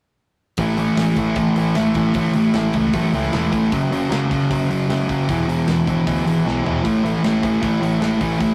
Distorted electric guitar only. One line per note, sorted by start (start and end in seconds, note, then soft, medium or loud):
0.58 0.77 A2 medium
0.58 0.78 E3 loud
0.58 0.78 A3 loud
0.77 0.96 A2 medium
0.77 0.97 E3 medium
0.77 0.97 A3 medium
0.96 1.16 A2 medium
0.96 1.16 E3 loud
0.96 1.18 A3 medium
1.16 1.35 A2 medium
1.16 1.36 E3 medium
1.16 1.37 A3 medium
1.36 1.54 A2 loud
1.36 1.56 E3 loud
1.36 1.57 A3 loud
1.56 1.74 A2 medium
1.56 1.75 E3 medium
1.56 1.76 A3 medium
1.75 1.94 A2 medium
1.75 1.95 E3 medium
1.75 1.97 A3 loud
1.96 2.14 A2 medium
1.96 2.14 E3 medium
1.96 2.16 A3 medium
2.15 2.33 A2 medium
2.15 2.35 E3 medium
2.15 2.36 A3 loud
2.35 2.53 A2 medium
2.35 2.54 E3 medium
2.35 2.55 A3 medium
2.54 2.74 A2 medium
2.54 2.75 E3 medium
2.54 2.76 A3 medium
2.75 2.93 A2 medium
2.75 2.94 E3 medium
2.75 2.94 A3 medium
2.94 3.12 A2 loud
2.94 3.14 E3 medium
2.94 3.13 A3 loud
3.13 3.32 A2 medium
3.13 3.33 E3 medium
3.13 3.33 A3 medium
3.33 3.51 A2 medium
3.33 3.52 E3 medium
3.33 3.52 A3 medium
3.52 3.71 A2 medium
3.52 3.71 E3 medium
3.52 3.71 A3 loud
3.72 3.90 F#2 medium
3.72 3.90 C#3 loud
3.72 3.91 F#3 loud
3.91 4.09 F#2 medium
3.91 4.10 C#3 medium
3.91 4.10 F#3 medium
4.10 4.28 F#2 medium
4.10 4.29 C#3 medium
4.10 4.30 F#3 medium
4.29 4.49 F#2 medium
4.29 4.49 C#3 medium
4.29 4.50 F#3 medium
4.50 4.68 F#2 medium
4.50 4.69 C#3 medium
4.50 4.69 F#3 loud
4.69 4.87 F#2 medium
4.69 4.88 C#3 medium
4.69 4.88 F#3 medium
4.88 5.07 F#2 medium
4.88 5.07 C#3 medium
4.88 5.08 F#3 loud
5.08 5.27 F#2 medium
5.08 5.27 C#3 loud
5.08 5.28 F#3 loud
5.28 5.47 E2 medium
5.28 5.48 B2 medium
5.28 5.49 E3 loud
5.48 5.67 E2 medium
5.48 5.67 B2 medium
5.48 5.69 E3 medium
5.68 5.86 E2 medium
5.68 5.86 B2 medium
5.68 5.88 E3 medium
5.87 6.04 E2 medium
5.87 6.05 B2 medium
5.87 6.07 E3 medium
6.05 6.24 E2 medium
6.05 6.24 B2 medium
6.05 6.26 E3 loud
6.25 6.44 E2 medium
6.25 6.45 B2 medium
6.25 6.46 E3 medium
6.45 6.63 E2 medium
6.45 6.63 B2 medium
6.45 6.66 E3 medium
6.64 6.83 E2 medium
6.64 6.83 B2 medium
6.64 6.84 E3 medium
6.84 7.03 A2 medium
6.84 7.04 E3 medium
6.84 7.05 A3 medium
7.03 7.23 A2 medium
7.03 7.24 E3 medium
7.03 7.25 A3 medium
7.23 7.42 A2 medium
7.23 7.43 E3 medium
7.23 7.43 A3 medium
7.43 7.61 A2 medium
7.43 7.61 E3 medium
7.43 7.62 A3 medium
7.62 7.80 A2 medium
7.62 7.80 E3 loud
7.62 7.82 A3 medium
7.81 7.99 A2 medium
7.81 8.00 E3 medium
7.81 8.01 A3 medium
8.00 8.20 A2 medium
8.00 8.20 E3 medium
8.00 8.22 A3 medium
8.21 8.38 A2 medium
8.21 8.39 E3 loud
8.21 8.41 A3 medium
8.40 8.54 A2 loud
8.40 8.54 E3 loud
8.40 8.54 A3 loud